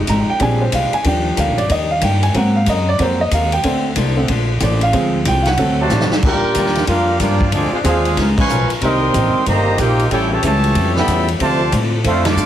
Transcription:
0.07 G#1 F3 G#3 D#4 G4 A#5, kick, hi-hat pedal, ride
0.28 G5, muted upright bass stroke
0.39 A#1 A#2 G3 G#3 C4 D4 G4 G#5, kick, ride
0.61 C5
0.72 C2 A#2 G#3 D4 G4 F5, kick, hi-hat pedal, ride
0.92 G#5, muted upright bass stroke, ride
1.04 D#2 D#3 F3 G3 A#3 D4 G4 G5, kick, ride
1.35 D2 D#3 A#3 D4 G4, kick, hi-hat pedal, ride
1.40 F5
1.47 A#1
1.58 G1 D5, ride
1.68 D#2 D#3 A#3 D4 G4 D#5, kick, ride
1.91 F5
2.01 G2 D#3 A#3 D4 G4 G5, kick, hi-hat pedal, ride
2.23 G#5, ride
2.33 G#2 F#3 G#3 A#3 C4 F#4 A#4 F#5, kick, ride
2.56 F5
2.66 F#2 G#3 C4 F#4 A#4 D#5, kick, hi-hat pedal, ride
2.89 D5
2.99 F2 F#3 G#3 A#3 C4 F#4 A#4 C5, kick, ride
3.21 D#5
3.30 D#2 G#3 C4 F#4 A#4 F5, kick, hi-hat pedal, ride
3.52 G5, ride
3.63 D2 D3 A3 A#3 C4 D4 A4 C5, kick, ride
3.96 C2 A#3 D4 A4 C5, kick, hi-hat pedal, ride
4.17 D3 A3 C4
4.27 A#1 A#3 D4 A4 C5, kick, ride
4.60 A1 A#3 D4 A4 C5 D5, kick, hi-hat pedal, ride
4.81 F5, ride
4.93 D2 D3 F3 G#3 C4 F4, kick, ride
4.97 G#4
5.25 C2 D3 C4 F4 G#4 G5, kick, hi-hat pedal, ride
5.42 F5, snare, ride
5.47 F#5
5.57 D2 D3 F#3 A3 C4 F#4 A4, kick, ride
5.79 C3 F#3 A3 F#4 C5 D5 A5
5.90 A1 D3 C4 F#4 A4 D5, snare, hi-hat pedal
6.01 snare
6.11 muted upright bass stroke, snare
6.22 D2 F3 G3 A#3 D4 F4 G4 A#4 D5 G5, kick, crash
6.43 muted upright bass stroke
6.54 D#2 G3 D4 F4 A#4, kick, hi-hat pedal, ride
6.66 snare
6.75 snare, ride
6.86 F2 G3 A#3 D4 F4 G4 A#4 F5, kick, ride
7.20 G2 F3 G3 A#3 D4 F4 G4 A#4 D5, kick, hi-hat pedal, ride
7.41 kick
7.52 D2 D3 F3 G#3 C4 D4 F4 G#4 D5, kick, ride
7.71 G#3 C4 D4 F4 G#4 C5 F5, muted upright bass stroke
7.83 D#2 D3 F3 G#3 C4 D4 F4 G#4 C5 F5, kick, hi-hat pedal, ride
8.05 ride
8.16 C#2 C#3 B3 F4 A#4, kick, snare, ride
8.37 F3 G#3 C#4 B4 F5 G#5 C#6, kick, crash
8.48 B1 C#3 F3 B3 D#4 F4 A#4, hi-hat pedal
8.69 muted upright bass stroke, ride
8.81 C2 C3 D#3 G3 A#3 C4 D#4 G4 A#4 D#5 C6, kick, ride
8.85 G5
9.14 A1 C3 A#3 D#4 G4, kick, hi-hat pedal, ride
9.33 muted upright bass stroke
9.45 G1 C3 D#3 G3 A#3 D#4 G4 C5 D#5 A#5, kick, ride
9.78 A#1 C3 A#3 D#4 G4 A#4 C5 G5, kick, hi-hat pedal, ride
9.99 ride
10.10 A1 A2 G3 C#4 E4 F4 G4 A4 C#5 G5, kick, ride
10.31 C#3 E3 A3 G4 C#5 E5 A5
10.42 C#2 A2 C#3 E3 G3 A3 C#4 F4 G4 C#5 E5 A5, kick, hi-hat pedal, ride
10.64 ride
10.74 F2 A2 G3 C#4 F4, kick, ride
10.95 E3 G3 B3 E5 G5 B5, snare
10.99 A4
11.07 E2 A2 G3 C#4 F4, kick, hi-hat pedal, ride
11.28 ride
11.39 D2 C3 D3 F3 A3 C4 F4 C5 D5 A5, kick, ride
11.58 F3 C4 D4 A4
11.72 A2 D3 A3 C4 F4, kick, hi-hat pedal, ride
12.04 F2 D3 A3 C4 D4 F4 A4 C5 F5, kick, ride
12.25 F3 A3 D4 C5 F5 A5 D6, snare, ride
12.36 G2 D3 A3 C4 F4, hi-hat pedal

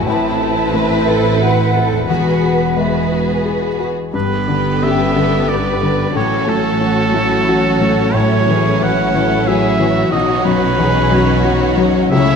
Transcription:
Already playing: A2 A3
0.00 E4 B4
0.05 A1 A2 C4 E4 A5
0.09 B4
0.41 E4
0.73 A3 B4
1.07 E4 A4
1.40 F#4 B4 F#5
1.75 E4 A4
1.91 E2
1.96 G#3
2.00 F#4
2.04 G#4 B4 F#5
2.09 E1 E2 B3 F#4 B4
2.44 F#4
2.77 G#3 B3 F#4 G#4 E5
3.11 F#4
3.45 G#4
3.80 F#4
4.14 G1 G2 D3 B3 G4 B4
4.48 D3 G3
4.83 C#4 D4 G4 E5
5.16 D3 A4 B4
5.49 G3 D4 B4 D5
5.82 D3 G3
6.14 A1 A2 F#3 C#4 F#4 A4 C#5
6.47 F#3 A3 A4
6.81 A3 F#4
7.14 A3 E4 C#5
7.48 F#3 F#4
7.80 F#3 A3
8.13 A2 E4 A4 C#5
8.48 E3 F#3 G#4
8.82 E3 E4 F#4 F#5
9.14 E3 A4 C#5
9.47 F#3 E4 G#4 E5
9.80 E3 F#3
9.85 F#4
10.12 B1 B2 F#3 C#4 D#4 C#5 D#5
10.45 F#2 F#3 B4
10.78 E2 D#4 G#4
11.12 F#2 F#4 C#5
11.44 F#3 D#4
11.77 F#2 F#3
12.10 C#2 C#3 A3 C#4 E4 C#5 E5

